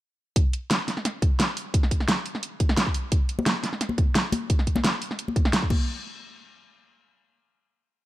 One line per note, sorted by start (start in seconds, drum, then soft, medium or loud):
0.36 kick loud
0.36 closed hi-hat loud
0.53 closed hi-hat medium
0.71 snare loud
0.71 closed hi-hat loud
0.88 snare soft
0.88 open hi-hat medium
0.97 snare soft
1.05 snare soft
1.05 closed hi-hat medium
1.22 kick loud
1.22 closed hi-hat medium
1.40 snare loud
1.40 closed hi-hat loud
1.57 open hi-hat medium
1.74 kick loud
1.74 closed hi-hat loud
1.83 snare soft
1.91 kick medium
1.91 closed hi-hat medium
2.00 snare soft
2.08 snare loud
2.08 closed hi-hat medium
2.26 open hi-hat medium
2.35 snare soft
2.43 closed hi-hat medium
2.60 kick loud
2.60 closed hi-hat medium
2.69 snare medium
2.77 snare loud
2.77 closed hi-hat medium
2.87 kick medium
2.94 open hi-hat medium
3.12 kick loud
3.12 closed hi-hat loud
3.29 closed hi-hat medium
3.39 high conga loud
3.46 snare loud
3.46 closed hi-hat loud
3.64 snare soft
3.64 open hi-hat medium
3.73 snare soft
3.81 snare soft
3.81 closed hi-hat medium
3.89 high conga medium
3.98 kick loud
3.98 closed hi-hat medium
4.15 snare loud
4.15 closed hi-hat medium
4.32 open hi-hat medium
4.32 high conga medium
4.50 kick loud
4.50 closed hi-hat medium
4.59 snare soft
4.67 kick medium
4.67 closed hi-hat medium
4.76 snare soft
4.76 high conga medium
4.84 snare loud
4.84 closed hi-hat medium
5.02 open hi-hat medium
5.11 snare soft
5.19 closed hi-hat medium
5.28 high conga medium
5.36 kick loud
5.36 closed hi-hat medium
5.45 snare medium
5.53 snare loud
5.53 closed hi-hat medium
5.62 kick medium
5.70 kick loud
5.70 crash medium
5.70 high conga medium